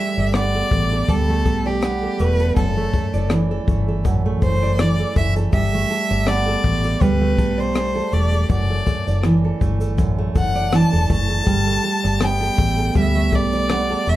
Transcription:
Already playing: steel-string acoustic guitar G3 A3 A4 D5, violin E5
0.17 fingered electric bass G1, steel-string acoustic guitar D5
0.34 steel-string acoustic guitar B3, violin D5, cross-stick, shaker
0.55 steel-string acoustic guitar A4
0.71 fingered electric bass A1, steel-string acoustic guitar A3, kick, shaker
0.92 steel-string acoustic guitar A4
1.08 fingered electric bass D2, steel-string acoustic guitar G3, violin A4, kick, shaker
1.29 steel-string acoustic guitar A3
1.46 fingered electric bass B1, steel-string acoustic guitar A4, kick, shaker
1.66 violin G4, steel-string acoustic guitar D5
1.82 steel-string acoustic guitar B3, cross-stick, shaker
2.03 steel-string acoustic guitar A4
2.19 fingered electric bass E1, steel-string acoustic guitar A3, violin B4, shaker
2.40 steel-string acoustic guitar A4, shaker
2.56 fingered electric bass F#1, steel-string acoustic guitar F#2, violin A4, kick, shaker
2.77 steel-string acoustic guitar A3
2.93 steel-string acoustic guitar A4, kick, shaker
3.14 fingered electric bass F#1, steel-string acoustic guitar D5, shaker
3.30 steel-string acoustic guitar E3, cross-stick, shaker
3.51 steel-string acoustic guitar A4
3.68 fingered electric bass G1, steel-string acoustic guitar A3, kick, shaker
3.88 steel-string acoustic guitar A4
4.05 fingered electric bass A1, steel-string acoustic guitar F#2, kick, shaker
4.26 steel-string acoustic guitar A3
4.42 fingered electric bass F#1, steel-string acoustic guitar A4, violin C5, kick, shaker
4.63 steel-string acoustic guitar D5
4.79 steel-string acoustic guitar E3, violin D5, cross-stick, shaker
5.00 steel-string acoustic guitar A4
5.16 fingered electric bass F#1, steel-string acoustic guitar A3, violin E5, kick, shaker
5.36 steel-string acoustic guitar A4, shaker
5.53 fingered electric bass G1, steel-string acoustic guitar G3, violin E5, kick, shaker
5.74 steel-string acoustic guitar A3
5.90 steel-string acoustic guitar A4, shaker
6.10 fingered electric bass G1, steel-string acoustic guitar D5, cross-stick, shaker
6.27 steel-string acoustic guitar B3, violin D5, cross-stick, shaker
6.47 steel-string acoustic guitar A4
6.64 fingered electric bass A1, steel-string acoustic guitar A3, kick, shaker
6.84 steel-string acoustic guitar A4, shaker
7.01 fingered electric bass D2, steel-string acoustic guitar G3, violin B4, kick, shaker
7.21 steel-string acoustic guitar A3
7.38 fingered electric bass B1, steel-string acoustic guitar A4, kick, shaker
7.58 violin C5, steel-string acoustic guitar D5
7.75 cross-stick, shaker
7.95 steel-string acoustic guitar A4
8.12 fingered electric bass E1, steel-string acoustic guitar A3, violin D5, shaker
8.32 steel-string acoustic guitar A4, shaker
8.50 fingered electric bass F#1, steel-string acoustic guitar F#2, violin D5, kick, shaker
8.70 steel-string acoustic guitar A3
8.86 steel-string acoustic guitar A4, kick, shaker
9.07 fingered electric bass F#1, steel-string acoustic guitar D5, shaker
9.23 steel-string acoustic guitar E3, cross-stick, shaker
9.45 steel-string acoustic guitar A4
9.61 fingered electric bass G1, steel-string acoustic guitar A3, kick, shaker
9.81 steel-string acoustic guitar A4, shaker
9.98 fingered electric bass A1, steel-string acoustic guitar F#2, kick, shaker
10.18 steel-string acoustic guitar A3
10.35 fingered electric bass F#1, steel-string acoustic guitar A4, violin F#5, kick, shaker
10.55 steel-string acoustic guitar D5, shaker
10.72 steel-string acoustic guitar E3, violin A5, cross-stick, shaker
10.93 fingered electric bass E1, steel-string acoustic guitar A4
11.09 fingered electric bass F#1, steel-string acoustic guitar A3, violin A5, kick, shaker
11.29 steel-string acoustic guitar A4
11.46 fingered electric bass G1, steel-string acoustic guitar G3, kick, shaker
11.66 steel-string acoustic guitar A3
11.84 steel-string acoustic guitar A4, shaker
12.04 fingered electric bass G1, steel-string acoustic guitar D5, cross-stick, shaker
12.21 steel-string acoustic guitar B3, violin G5, cross-stick, shaker
12.41 steel-string acoustic guitar A4
12.58 fingered electric bass A1, steel-string acoustic guitar A3, kick, shaker
12.78 steel-string acoustic guitar A4, shaker
12.95 fingered electric bass D2, steel-string acoustic guitar G3, violin E5, kick, shaker
13.15 steel-string acoustic guitar A3
13.32 fingered electric bass B1, steel-string acoustic guitar A4, violin D5, kick, shaker
13.52 steel-string acoustic guitar D5, shaker
13.69 steel-string acoustic guitar B3, cross-stick, shaker
13.90 steel-string acoustic guitar A4
14.06 fingered electric bass E1, steel-string acoustic guitar A3, violin E5, shaker

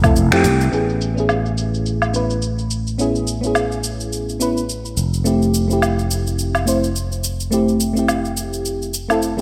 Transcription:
Already playing: fretless electric bass F1
0.03 fm electric piano A3 C4 E4 A4, kick, cabasa, low woodblock
0.16 fretless electric bass F1, cabasa
0.31 fretless electric bass F2, fm electric piano A3 C4 E4 G4, finger snap, cabasa
0.44 fretless electric bass C2, open hi-hat, cabasa
0.61 cabasa
0.71 fretless electric bass A1, fm electric piano B3 C#4 E4 G#4, cabasa
0.89 cabasa
1.01 cabasa
1.14 fm electric piano B3 C#4 E4, cabasa
1.20 fm electric piano G#4
1.29 cabasa, low woodblock
1.46 cabasa
1.58 cabasa
1.74 cabasa
1.86 cabasa
2.02 cabasa, low woodblock
2.13 fm electric piano B3 C#4 E4 B4, cabasa
2.30 cabasa
2.42 cabasa
2.59 cabasa
2.71 cabasa
2.87 cabasa
2.98 fm electric piano B3 C#4 E4 G#4, cabasa
3.15 cabasa
3.27 cabasa
3.41 fm electric piano B3 C#4 E4, cabasa
3.47 fm electric piano G#4
3.55 cabasa, low woodblock
3.72 cabasa
3.84 cabasa
4.00 cabasa
4.13 cabasa
4.29 cabasa
4.40 fm electric piano B3 C#4 E4 B4, cabasa
4.57 cabasa
4.69 cabasa
4.85 cabasa
4.97 fretless electric bass F1, cabasa
5.14 cabasa
5.24 fm electric piano A3 C4 E4 G4, cabasa
5.42 cabasa
5.54 cabasa
5.68 fm electric piano A3 C4 E4, cabasa
5.73 fm electric piano G4
5.82 cabasa, low woodblock
5.99 cabasa
6.11 cabasa
6.27 cabasa
6.39 cabasa
6.55 cabasa, low woodblock
6.66 fm electric piano A3 C4 E4 C5, cabasa
6.84 cabasa
6.96 cabasa
7.12 cabasa
7.24 cabasa
7.40 cabasa
7.51 fm electric piano A3 C4 E4 G4, cabasa
7.68 cabasa
7.80 cabasa
7.93 fm electric piano A3 C4 E4, cabasa
7.99 fm electric piano G4
8.08 cabasa, low woodblock
8.25 cabasa
8.37 cabasa
8.53 cabasa
8.65 cabasa
8.82 cabasa
8.94 cabasa
9.08 fm electric piano A3 C4 E4 A4, cabasa, low woodblock
9.22 cabasa
9.37 fm electric piano A3 C4

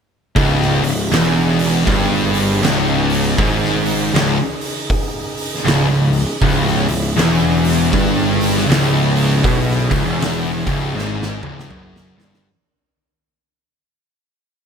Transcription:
0.36 picked electric bass C#1, distorted electric guitar C#2, tonewheel organ C#3 D#4 G#4, kick, open hi-hat
0.61 snare
0.83 picked electric bass C#1, distorted electric guitar C#2, open hi-hat
1.12 picked electric bass E1, distorted electric guitar E2, snare, open hi-hat
1.59 open hi-hat
1.87 picked electric bass G1, distorted electric guitar G2, kick, open hi-hat
2.34 open hi-hat
2.62 picked electric bass C#1, distorted electric guitar C#2, snare, open hi-hat
3.10 open hi-hat
3.38 picked electric bass G#1, distorted electric guitar G#2, kick, open hi-hat
3.65 snare
3.86 open hi-hat
4.14 picked electric bass C#1, distorted electric guitar C#2, snare, open hi-hat
4.61 open hi-hat
4.90 kick, open hi-hat
5.37 open hi-hat
5.54 snare
5.66 picked electric bass C#1, distorted electric guitar C#2, snare, open hi-hat
5.90 picked electric bass C#1, distorted electric guitar C#2
6.13 open hi-hat
6.41 picked electric bass C#1, distorted electric guitar C#2, tonewheel organ E4, kick, open hi-hat
6.67 snare
6.89 picked electric bass C#1, distorted electric guitar C#2, open hi-hat
7.16 picked electric bass E1, distorted electric guitar E2, snare, open hi-hat
7.64 open hi-hat
7.93 picked electric bass G1, distorted electric guitar G2, kick, open hi-hat
8.41 open hi-hat
8.58 snare
8.67 picked electric bass C#1, distorted electric guitar C#2, open hi-hat
8.72 snare
9.16 open hi-hat
9.44 picked electric bass B1, distorted electric guitar B2, kick, open hi-hat
9.71 snare
9.91 picked electric bass C#1, distorted electric guitar C#2, kick, open hi-hat
10.05 picked electric bass E1, distorted electric guitar E2
10.20 snare, open hi-hat
10.67 picked electric bass C#1, distorted electric guitar C#2, kick, open hi-hat
10.95 picked electric bass G#1, distorted electric guitar G#2, snare
11.22 snare
11.42 picked electric bass C#1, distorted electric guitar C#2, mid tom
11.59 snare
11.71 picked electric bass F#1, distorted electric guitar F#2, mid tom
11.96 snare
12.18 picked electric bass G1, distorted electric guitar G2, snare
12.34 snare

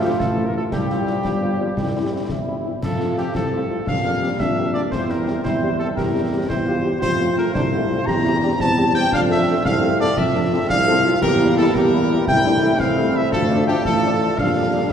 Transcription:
Already playing: tuba D2, trombone section F4
0.01 french horn section F3 A3 F4, euphonium G3, trumpet section G4
0.18 tuba A1, euphonium A3, trumpet section A4, concert bass drum, snare
0.37 french horn section F3 A3 F4
0.45 euphonium A#3, trumpet section A#4
0.54 french horn section F3 A3 F4, euphonium A3, trumpet section A4
0.71 tuba C2, euphonium G3, trombone section C4, trumpet section G4, concert bass drum, snare, crash
0.90 french horn section G3 C4 F4, snare
1.07 french horn section G3 C4 F4, snare
1.24 tuba G1, trombone section G3, concert bass drum, snare
1.42 french horn section G3 C4 F4
1.59 trombone section F3, french horn section G3 C4 F4
1.75 tuba C2, trombone section G3, concert bass drum, snare
1.95 french horn section G3 C4 E4
2.11 french horn section G3 C4 E4
2.29 tuba G1, trombone section E4, concert bass drum, snare
2.47 french horn section G3 C4 E4
2.64 french horn section G3 C4 E4
2.82 tuba F2, trombone section F3 A3, euphonium F4, trumpet section A4, concert bass drum, snare, crash
2.99 french horn section A3 C4 F4, snare
3.17 french horn section A3 C4 F4, trumpet section G4, snare
3.34 tuba C2, euphonium C4, trumpet section A4, concert bass drum, snare
3.52 french horn section A3 C4 F4
3.70 french horn section A3 C4 F4
3.87 tuba F2, trombone section G3 A#3, euphonium D4, trumpet section F5, concert bass drum, snare
4.04 euphonium A#3, french horn section A#3 D4 G4
4.21 french horn section A#3 D4 G4, euphonium C4
4.39 tuba F2, euphonium D4, trumpet section E5, concert bass drum, snare
4.57 french horn section A#3 D4 G4
4.74 french horn section A#3 D4 G4, trumpet section D5
4.91 tuba E2, trombone section G3 C4, euphonium E4, trumpet section C5, concert bass drum, snare
5.09 french horn section G3 C4 G4, trumpet section A#4, snare
5.26 french horn section G3 C4 G4, snare
5.44 tuba E2, euphonium E4, trumpet section C5, concert bass drum, snare
5.62 french horn section G3 C4 G4
5.79 french horn section G3 C4 G4, trumpet section A4
5.95 tuba E2, euphonium G4, trumpet section A#4, concert bass drum, snare
6.14 french horn section G3 C4 G4
6.33 french horn section G3 C4 G4
6.49 tuba E2, euphonium E4, trumpet section C5, concert bass drum, snare
6.66 french horn section G3 C4 G4, euphonium F4
6.84 french horn section G3 C4 G4, euphonium G4
7.01 tuba F2, trombone section A3 C4, euphonium F4, trumpet section C5, concert bass drum, snare, crash
7.20 french horn section A3 C4 F4, snare
7.37 french horn section A3 C4 F4, trumpet section A#4, snare
7.54 tuba C2, euphonium D4, trumpet section C5, concert bass drum, snare
7.72 french horn section A3 C4 F4, euphonium E4
7.89 french horn section A3 C4 F4, euphonium F4
8.07 tuba E2, trombone section G3, euphonium G4, trumpet section A#5, concert bass drum, snare
8.24 french horn section G3 C4 G4, euphonium E4
8.41 french horn section G3 C4 G4, euphonium D4
8.58 tuba E2, euphonium C4, trumpet section A5, concert bass drum, snare
8.77 french horn section G3 C4 G4
8.95 french horn section G3 C4 G4, trumpet section G5
9.11 tuba F2, trombone section A3 C4, euphonium D4, trumpet section F5, concert bass drum, snare
9.30 french horn section F3 C4 A4, trumpet section E5, snare
9.47 french horn section F3 C4 A4, snare
9.64 tuba C2, trumpet section F5, concert bass drum, snare
9.83 french horn section F3 C4 A4
9.99 french horn section F3 C4 A4, trumpet section D5
10.16 tuba F2, euphonium C4, trumpet section E5, concert bass drum, snare
10.34 french horn section F3 C4 A4, euphonium D4
10.52 french horn section F3 C4 A4, euphonium E4
10.69 tuba C2, euphonium D4, trumpet section F5, concert bass drum, snare
10.87 french horn section F3 C4 A4, euphonium C4
11.04 french horn section F3 C4 A4, euphonium F4
11.21 tuba E2, trombone section G3 A#3, euphonium G4, trumpet section A#4, concert bass drum, snare, crash
11.40 french horn section G3 A#3 E4, snare
11.56 french horn section G3 A#3 E4, trumpet section A4, snare
11.74 tuba E2, euphonium G4, trumpet section A#4, concert bass drum, snare
11.92 french horn section G3 A#3 E4
12.10 french horn section G3 A#3 E4
12.27 tuba C2, trombone section E3 A3, euphonium E4, trumpet section G5, concert bass drum, snare
12.45 french horn section E3 A3 E4, euphonium D4
12.62 french horn section E3 A3 E4, euphonium E4
12.79 tuba C2, euphonium C4, trumpet section F5, concert bass drum, snare
12.98 french horn section E3 A3 E4
13.15 french horn section E3 A3 E4, trumpet section E5
13.32 tuba D2, trombone section F3, euphonium F4, trumpet section A4, concert bass drum, snare
13.50 french horn section F3 A3 D4, snare
13.66 french horn section F3 A3 D4, trumpet section G4, snare
13.84 tuba A1, trumpet section A4, concert bass drum, snare
14.03 french horn section F3 A3 D4
14.20 french horn section F3 A3 D4
14.37 tuba A#1, trombone section D3 G3, euphonium D4, trumpet section F5, concert bass drum, snare
14.55 french horn section G3 A#3 D4
14.73 french horn section G3 A#3 D4

